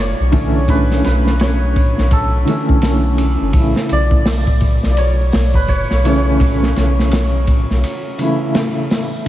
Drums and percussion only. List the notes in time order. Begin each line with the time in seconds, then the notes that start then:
0.32 kick, ride
0.68 kick, ride
0.91 snare
1.04 snare, ride
1.27 snare
1.39 snare, ride
1.76 kick, ride
1.98 snare
2.11 kick, ride
2.47 ride
2.69 kick
2.82 snare, ride
3.18 ride
3.53 kick, ride
3.76 snare
3.89 ride
4.11 kick
4.25 snare, open hi-hat
4.47 kick
4.60 kick, ride
4.83 snare
4.97 ride
5.32 snare, open hi-hat
5.54 kick
5.68 kick, ride
5.91 snare
6.05 ride
6.40 kick, ride
6.63 snare
6.76 snare, ride
6.99 snare
7.11 snare, ride
7.47 kick, ride
7.71 snare
7.84 ride
8.19 ride
8.55 snare, ride
8.90 snare, open hi-hat